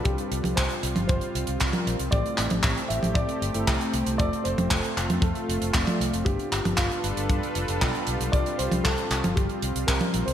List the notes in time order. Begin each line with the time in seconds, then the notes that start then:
Already playing: G3
0.04 C2 G3 C4 F4 G4, kick, closed hi-hat
0.18 closed hi-hat
0.31 C2, closed hi-hat
0.44 C2, closed hi-hat, high tom
0.56 C2 C5, kick, clap, closed hi-hat
0.70 closed hi-hat
0.83 C2, closed hi-hat
0.96 G1, closed hi-hat, high tom
1.07 G1 C5, kick, closed hi-hat
1.21 closed hi-hat
1.35 C2, closed hi-hat
1.47 C2, closed hi-hat
1.60 C2 G3 C4 F4 A#4, kick, clap, closed hi-hat
1.73 closed hi-hat, high tom
1.87 A#1, closed hi-hat
1.99 C2, closed hi-hat
2.11 A1 A3 C4 E4 G4 D5, kick, closed hi-hat
2.26 closed hi-hat
2.38 A1, clap, closed hi-hat
2.50 A1, closed hi-hat, high tom
2.63 A1, kick, clap, closed hi-hat
2.77 closed hi-hat
2.88 A1 E5, closed hi-hat
3.03 A1, closed hi-hat, high tom
3.14 A2 D5, kick, closed hi-hat
3.29 closed hi-hat
3.42 G1, closed hi-hat
3.54 G1 A3 C4 E4 A4, closed hi-hat
3.68 C2, kick, clap, closed hi-hat
3.81 closed hi-hat
3.94 C2, closed hi-hat
4.06 C2, closed hi-hat
4.18 F1 A3 C4 F4 A4 D5, kick, closed hi-hat
4.33 closed hi-hat
4.44 F1 C5, closed hi-hat
4.58 F1, closed hi-hat, high tom
4.71 F1, kick, clap, closed hi-hat
4.84 closed hi-hat
4.97 F1, clap, closed hi-hat
5.10 F2, closed hi-hat, high tom
5.21 F2 A4, kick, closed hi-hat
5.35 closed hi-hat
5.49 F1, closed hi-hat
5.62 F1, closed hi-hat
5.74 F1 A3 C4 F4 D5, kick, clap, closed hi-hat
5.87 closed hi-hat, high tom
6.00 C2, closed hi-hat
6.13 F1, closed hi-hat
6.25 G1 G3 B3 D4 F4 G4 A4 B4, kick, closed hi-hat
6.39 closed hi-hat
6.52 G1, clap, closed hi-hat
6.65 G1, closed hi-hat, high tom
6.77 G1 F4, kick, clap, closed hi-hat
6.91 closed hi-hat
7.04 G1, closed hi-hat
7.17 G1, closed hi-hat
7.30 G2, kick, closed hi-hat
7.43 closed hi-hat
7.55 F1, closed hi-hat
7.68 F1, closed hi-hat
7.81 B1 B3 D4 F4 B4, kick, clap, closed hi-hat
7.95 closed hi-hat
8.07 B1, closed hi-hat
8.20 B1, closed hi-hat
8.32 C2 G3 C4 F4 G4 D5, kick, closed hi-hat
8.46 closed hi-hat
8.58 C2 C5, closed hi-hat
8.72 C2, closed hi-hat, high tom
8.84 C2 A4, kick, clap, closed hi-hat
8.98 closed hi-hat
9.11 C2, clap, closed hi-hat
9.24 G1, closed hi-hat, high tom
9.35 G1 G4, kick, closed hi-hat
9.49 closed hi-hat
9.62 C2, closed hi-hat
9.75 C2, closed hi-hat
9.87 C2 G3 C4 F4 A#4, kick, clap, closed hi-hat
10.01 closed hi-hat, high tom
10.14 A#1, closed hi-hat
10.26 C2 C5, closed hi-hat